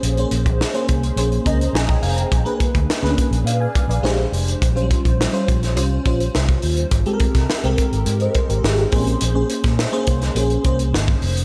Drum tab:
HH |xxxx-xxxxxxx--ox|xxxx--xxx-xx--ox|xxxx-xxxx-xx-xox|xxxx-xxxxxxx-xox|
SD |----o-------o---|----oo------o---|----o--o----o---|---oo-------o---|
BD |---o--o---o--o--|o-oo--o---o-----|o-oo--o---o--o--|o-oo--o---o---o-|

HH |x-xx-xxxxxxx--ox|
SD |---oo--o----o---|
BD |---o--o---o--o--|